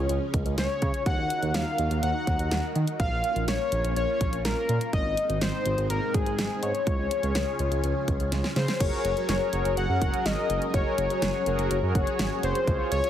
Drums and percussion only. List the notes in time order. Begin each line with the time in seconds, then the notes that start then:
0.09 closed hi-hat
0.34 kick, closed hi-hat
0.46 closed hi-hat
0.58 snare, closed hi-hat
0.82 kick, closed hi-hat
0.94 closed hi-hat
1.06 kick, closed hi-hat
1.30 closed hi-hat
1.43 closed hi-hat
1.54 snare, closed hi-hat
1.78 closed hi-hat
1.91 closed hi-hat
2.03 closed hi-hat
2.27 kick, closed hi-hat
2.39 closed hi-hat
2.51 snare, closed hi-hat
2.76 closed hi-hat
2.87 closed hi-hat
3.00 kick, closed hi-hat
3.24 closed hi-hat
3.36 closed hi-hat
3.48 snare, closed hi-hat
3.72 closed hi-hat
3.85 closed hi-hat
3.96 closed hi-hat
4.21 kick, closed hi-hat
4.33 closed hi-hat
4.45 snare, closed hi-hat
4.69 closed hi-hat
4.81 closed hi-hat
4.93 kick, closed hi-hat
5.17 closed hi-hat
5.30 closed hi-hat
5.41 snare, closed hi-hat
5.66 closed hi-hat
5.78 closed hi-hat
5.90 closed hi-hat
6.14 kick, closed hi-hat
6.26 closed hi-hat
6.39 snare, closed hi-hat
6.63 closed hi-hat
6.75 closed hi-hat
6.87 kick, closed hi-hat
7.11 closed hi-hat
7.23 closed hi-hat
7.35 snare, closed hi-hat
7.59 closed hi-hat
7.72 closed hi-hat
7.84 closed hi-hat
8.08 kick, closed hi-hat
8.20 closed hi-hat
8.32 snare, closed hi-hat
8.44 snare
8.56 snare, closed hi-hat
8.68 snare, closed hi-hat
8.80 kick, closed hi-hat, crash
9.05 closed hi-hat
9.17 closed hi-hat
9.29 snare, closed hi-hat
9.53 closed hi-hat
9.65 closed hi-hat
9.77 closed hi-hat
10.02 kick, closed hi-hat
10.14 closed hi-hat
10.26 snare, closed hi-hat
10.50 closed hi-hat
10.62 closed hi-hat
10.74 kick, closed hi-hat
10.98 closed hi-hat
11.10 closed hi-hat
11.22 snare, closed hi-hat
11.46 closed hi-hat
11.59 closed hi-hat
11.71 closed hi-hat
11.95 kick, closed hi-hat
12.07 closed hi-hat
12.19 snare, closed hi-hat
12.43 closed hi-hat
12.55 closed hi-hat
12.68 kick, closed hi-hat
12.92 closed hi-hat
13.04 closed hi-hat